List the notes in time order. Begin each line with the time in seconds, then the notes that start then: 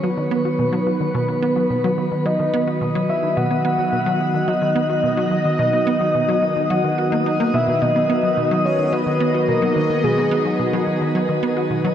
Already playing: D#3 F#3 B3 F#4 G#4 B4
0.03 F#3 B4
0.17 D#3
0.31 B3
0.45 F#4
0.59 B2
0.73 F#3
0.87 F#3
1.01 D#3
1.14 B2 B4
1.28 B3
1.42 B3
1.56 F#3
1.70 B2
1.84 F#3
1.98 F#3
2.12 D#3
2.26 F#3 D#5
2.40 D#3
2.54 B3
2.67 F#4
2.81 B2
2.95 F#3
3.09 F#3 E5
3.23 D#3
3.37 B2 F#5
3.51 B3 D#5
3.65 B3
3.79 F#3
3.92 B2
4.06 F#3
4.20 F#3
4.34 D#3
4.48 F#3 D#5
4.62 D#3
4.76 B3
4.90 F#4
5.04 B2
5.17 F#3
5.31 F#3
5.45 D#3
5.59 B2 D#5
5.73 B3
5.87 B3
6.01 F#3
6.15 B2
6.29 F#3
6.42 F#3
6.57 D#3
6.70 F#3 F#5
6.84 D#3
6.98 F#4
7.12 A#3
7.26 D#4
7.40 A#3
7.54 B2 E5
7.68 B2
7.82 B2 D#5
7.96 B3 D#5
8.09 B3
8.23 F#3
8.37 B2
8.51 F#3
8.65 F#3 C#5
8.79 D#3
8.93 F#3 B4
9.07 D#3
9.20 B3
9.34 F#4
9.48 B2 A#4
9.62 F#3
9.76 D#3
9.90 D#3
10.04 B2 G#4
10.18 B3
10.31 B3
10.45 F#3
10.59 B2
10.73 F#3
10.87 F#3
11.01 D#3
11.15 F#3
11.29 D#3
11.43 B3
11.57 F#4
11.70 B2
11.84 F#3